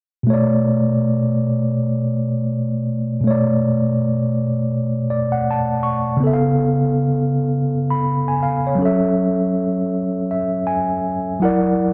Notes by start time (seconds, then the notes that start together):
0.23 B2 A3
0.30 C#5 D5
3.21 B2 A3
3.27 C#5 D5
5.10 D5
5.32 F#5
5.51 A5
5.83 C#6
6.17 C#3 B3
6.24 A4 E5
6.33 F5
7.90 B5
8.28 G#5
8.43 F5
8.67 C#5
8.75 F#3 C#4
8.82 A4 E5
10.31 E5
10.67 G#5
11.40 F#3 E4 A#4 F#5
11.45 D5